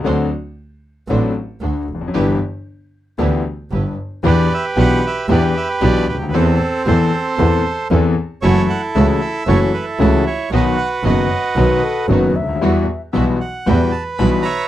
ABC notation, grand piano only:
X:1
M:4/4
L:1/16
Q:1/4=114
K:G
V:1 name="Grand piano" clef=bass
[D,,D,F,CDA]2 z6 [A,,,A,,F,CDA]2 z2 [D,,D,]2 z/2 E,,/2 =F,,/2 ^F,,/2 | [G,,,G,,E,B,DG]2 z6 [D,,D,E,B,DG]2 z2 [G,,,G,,]2 z2 | [K:Em] [E,,E,B,DG]2 z2 [B,,,B,,E,B,DG]2 z2 [E,,E,B,DG]2 z2 [B,,,B,,E,B,DG]2 z/2 ^C,,/2 D,,/2 ^D,,/2 | [E,,E,B,CA]2 z2 [E,,E,B,CA]2 z2 [E,,E,B,CA]2 z2 [E,,E,B,CA]2 z2 |
[F,,E,F,A,^CF]2 z2 [^C,,^C,E,A,CF]2 z2 [F,,E,F,A,CF]2 z2 [C,,C,E,A,CF]2 z2 | [B,,,B,,^D,F,B,F]2 z2 [F,,,F,,D,F,B,F]2 z2 [B,,,B,,D,F,B,F]2 z2 [F,,,F,,D,F,B,F]2 z/2 ^C,,/2 =D,,/2 ^D,,/2 | [E,,E,G,B,F]2 z2 [B,,,B,,E,G,B,F]2 z2 [E,,E,G,B,F]2 z2 [B,,,B,,E,G,B,F]2 z2 |]